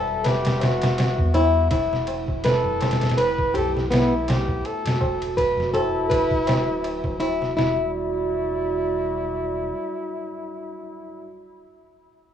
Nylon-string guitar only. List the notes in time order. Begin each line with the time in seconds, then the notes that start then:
Already playing: A4
0.25 B4
1.35 E4
1.71 E4
2.45 B4
3.17 B4
3.54 G4
3.91 B3
5.37 B4
5.74 A4
6.10 B4
7.20 E4
7.57 E4